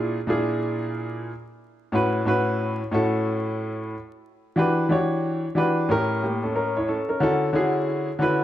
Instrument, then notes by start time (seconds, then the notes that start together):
upright piano
Already playing: A#2 D4 E4 F4 G#4
0.27 A#2 D4 E4 F4 G#4
1.92 A2 C#4 E4 F#4 B4
2.25 A2 C#4 E4 F#4 B4
2.91 A2 C#4 E4 F#4 A4
4.56 E3 D4 F#4 G4 B4
4.89 E3 D4 F#4 G4 C#5
5.55 E3 D4 F#4 G4 B4
5.88 A2 C#4 E4 G4 A#4
6.23 A#3 G4
6.43 C#4 A4
6.56 C#4 A#4
6.77 E4 C#5
6.88 C#4 A4
7.09 C#4 A#4
7.20 D3 C#4 E4 F#4 A4
7.53 D3 C#4 E4 F#4 G#4
8.19 D3 C#4 E4 F#4 B4